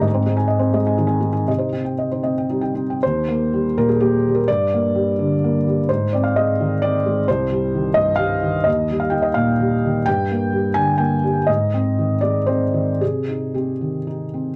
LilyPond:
<<
  \new Staff \with { instrumentName = "Felt piano" } { \time 3/4 \key ees \major \tempo 4 = 126 ees''16 c''16 ees'16 aes''16 ees''16 c''16 ees''16 aes''16 ees'16 aes''16 ees'16 aes''16 | ees''16 c''16 ees'16 g''16 ees''16 c''16 ees''16 g''16 ees'16 g''16 ees'16 g''16 | c''4. bes'16 aes'16 g'8. bes'16 | d''2~ d''8 r8 |
c''8 d''16 f''16 ees''4 d''4 | c''4. ees''8 f''4 | ees''8. f''16 g''16 ees''16 f''4. | g''4. aes''8 g''8 r8 |
ees''4. d''8 c''4 | aes'4 g'4 r4 | }
  \new Staff \with { instrumentName = "Felt piano" } { \clef bass \time 3/4 \key ees \major aes,16 c'16 aes16 ees'8 c'16 aes16 ees'16 ees16 c'16 aes16 ees'16 | c16 ees'16 c'8 r16 ees'16 c'8 g16 ees'16 c'8 | ees,8 bes8 g8 bes,8 bes8 g8 | g,8 bes8 g8 d8 bes8 g8 |
aes,8 c'8 aes8 ees8 c'8 aes8 | c,8 g8 ees8 g,8 g8 ees8 | ees,8 g8 ees8 bes,8 g8 ees8 | g,8 bes8 g8 d8 bes8 g8 |
aes,8 c'8 ees8 aes8 c'8 ees8 | c8 ees'8 c'8 ees8 ees'8 c'8 | }
>>